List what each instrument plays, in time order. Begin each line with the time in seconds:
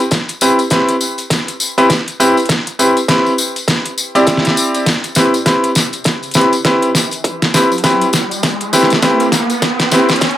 0.11 kick, snare, closed hi-hat, tambourine
0.29 closed hi-hat, tambourine
0.41 grand piano C4 E4 G4 B4, tambourine
0.59 closed hi-hat, tambourine
0.70 grand piano C4 E4 G4 B4, kick, snare, closed hi-hat, tambourine
0.89 closed hi-hat, tambourine
1.01 tambourine
1.18 closed hi-hat, tambourine
1.30 kick, snare, closed hi-hat, tambourine
1.48 closed hi-hat, tambourine
1.60 tambourine
1.78 grand piano C4 E4 G4 B4, closed hi-hat, tambourine
1.90 kick, snare, closed hi-hat, tambourine
2.08 closed hi-hat, tambourine
2.20 grand piano C4 E4 G4 B4, tambourine
2.37 closed hi-hat, tambourine
2.40 closed hi-hat
2.46 kick, snare, closed hi-hat, tambourine
2.50 closed hi-hat
2.67 closed hi-hat, tambourine
2.79 grand piano C4 E4 G4 B4, tambourine
2.97 closed hi-hat, tambourine
3.08 grand piano C4 E4 G4 B4, kick, snare, closed hi-hat, tambourine
3.26 tambourine
3.38 tambourine
3.56 closed hi-hat, tambourine
3.68 kick, snare, closed hi-hat, tambourine
3.86 closed hi-hat, tambourine
3.98 tambourine
4.15 grand piano C4 E4 G4 D5, closed hi-hat, tambourine
4.27 kick, snare, closed hi-hat, tambourine
4.37 snare
4.45 snare, closed hi-hat, tambourine
4.57 tambourine
4.74 closed hi-hat, tambourine
4.86 kick, snare, closed hi-hat, tambourine, riser
5.04 closed hi-hat, tambourine
5.15 grand piano C4 E4 G4 B4, snare, tambourine
5.34 closed hi-hat, tambourine
5.46 grand piano C4 E4 G4 B4, kick, snare, closed hi-hat, tambourine
5.63 closed hi-hat, tambourine
5.75 snare, tambourine
5.93 closed hi-hat, tambourine
6.04 kick, snare, closed hi-hat, tambourine
6.23 closed hi-hat, tambourine
6.31 grand piano C4 E4 G4 B4, snare, closed hi-hat, tambourine
6.41 closed hi-hat
6.53 closed hi-hat, tambourine
6.65 grand piano C4 E4 G4 B4, kick, snare, closed hi-hat, tambourine
6.82 closed hi-hat, tambourine
6.95 snare, tambourine
7.11 closed hi-hat, tambourine
7.24 kick, closed hi-hat, tambourine
7.42 snare, closed hi-hat, tambourine
7.54 grand piano C4 E4 G4 B4, snare, tambourine
7.72 tambourine
7.78 closed hi-hat
7.84 grand piano C4 E4 G4 B4, kick, snare, closed hi-hat, tambourine
8.01 closed hi-hat, tambourine
8.13 snare, tambourine
8.31 closed hi-hat, tambourine
8.43 kick, snare, closed hi-hat, tambourine
8.60 closed hi-hat, tambourine
8.73 grand piano C4 E4 G4 B4, snare, tambourine
8.83 snare
8.90 snare, closed hi-hat, tambourine
9.02 grand piano C4 E4 G4 B4, kick, snare, closed hi-hat, tambourine
9.20 closed hi-hat, tambourine
9.32 snare, tambourine
9.50 closed hi-hat, tambourine
9.62 kick, snare, closed hi-hat, tambourine
9.79 snare, closed hi-hat, tambourine
9.91 grand piano C4 E4 G4 B4, snare, tambourine
10.09 snare, closed hi-hat, tambourine
10.16 closed hi-hat
10.21 kick, snare, closed hi-hat, tambourine
10.31 closed hi-hat